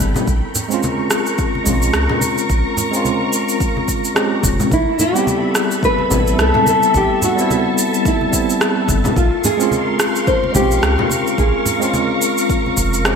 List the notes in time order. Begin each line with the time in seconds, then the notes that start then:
Already playing: G3 B3 C4 E4 A4 G5 B5
0.00 G1, kick, cabasa
0.14 low conga, cabasa
0.27 A#1 A#4 A#5 C#6, kick, cabasa
0.55 low conga, cabasa
0.69 G#3 C4 C#4, cabasa
0.74 F4
0.83 high conga, cabasa
1.11 cross-stick, cabasa
1.26 cabasa
1.38 kick, cabasa
1.55 high conga
1.64 A#1 G#3 C4 C#4, kick, low conga, cabasa
1.69 F4
1.82 cabasa
1.94 C#2, cross-stick, cabasa
2.10 low conga
2.21 high conga, cabasa
2.38 cabasa
2.50 A#1, kick, cabasa
2.77 low conga, cabasa
2.91 G#3 C4 C#4, cabasa
2.96 F4
3.05 high conga, cabasa
3.33 cabasa
3.49 cabasa
3.60 kick, cabasa
3.77 high conga
3.88 kick, cabasa
4.05 cabasa
4.15 G#3 C4 C#4 G4, cross-stick, cabasa
4.43 F1, kick, high conga, cabasa
4.60 low conga, cabasa
4.71 A1 E4 A4 E5 B5, kick, cabasa
4.99 G4, low conga, cabasa
5.13 G3 B3 C4, cabasa
5.18 E4
5.27 high conga, cabasa
5.55 cross-stick, cabasa
5.71 cabasa
5.83 B4, kick, cabasa
5.99 high conga
6.08 A1 G3 B3 C4, kick, low conga, cabasa
6.13 E4
6.27 cabasa
6.38 C2 A4, cross-stick, cabasa
6.54 low conga
6.67 A4, high conga, cabasa
6.83 cabasa
6.94 A1 G4 A5, kick, cabasa
7.22 F#4, low conga, cabasa
7.36 G3 B3 C4, cabasa
7.41 E4
7.51 high conga, cabasa
7.78 cabasa
7.94 cabasa
8.05 E4, kick, cabasa
8.21 high conga
8.31 G3 B3 C4, kick, cabasa
8.36 E4
8.50 cabasa
8.61 cross-stick, cabasa
8.88 G1, kick, high conga, cabasa
9.04 low conga, cabasa
9.16 A#1 F4 A#4 F5 C6 C#6, kick, cabasa
9.44 G#4, low conga, cabasa
9.57 G#3 C4 C#4, cabasa
9.63 F4
9.71 high conga, cabasa
10.00 cross-stick, cabasa
10.16 cabasa
10.27 C5, kick, cabasa
10.44 high conga
10.52 A#1 G#3 C4 C#4 G4, kick, low conga, cabasa
10.57 F4
10.71 cabasa
10.83 C#2, cross-stick, cabasa
10.98 low conga
11.10 high conga, cabasa
11.27 cabasa
11.38 A#1 G#4 A#5, kick, cabasa
11.66 low conga, cabasa
11.80 G#3 C4 C#4, cabasa
11.85 F4
11.94 high conga, cabasa
12.22 cabasa
12.38 cabasa
12.50 kick, cabasa
12.66 high conga
12.77 F1, kick, cabasa
12.94 cabasa
13.04 G#3 C4 C#4 G4, cross-stick, cabasa